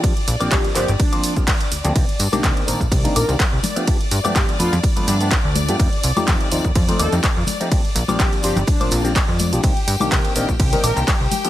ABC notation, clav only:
X:1
M:4/4
L:1/16
Q:"Swing 16ths" 1/4=125
K:Cdor
V:1 name="Clav"
[F,B,DG] z2 [F,B,CDG]3 [F,B,CDc] z2 [F,B,CDc]2 [F,B,CDG] z3 [F,B,CDG] | [B,D] z2 [E,B,CDG]3 [E,B,CDB] z2 [E,B,CDB]2 [E,B,CDG] z3 [F,A,=B,DG] | [F,A,=B,DG] z2 [F,A,B,DG]3 [F,A,B,D=B] z2 [F,A,B,DB]2 [F,A,B,DG] z3 [F,A,B,DG] | [F,A,G] z2 [F,A,CEG]3 [F,A,CEc] z2 [F,A,CEc]2 [F,A,CEG] z3 [F,A,CEG] |
z3 [F,B,CDG]3 [F,B,CDc] z2 [F,B,CDc]2 [F,B,CDG] z3 [F,B,CDG] | [E,D] z2 [E,B,CDG]3 [E,B,CDB] z2 [E,B,CDB]2 [E,B,CDG] z3 [F,A,=B,DG] |]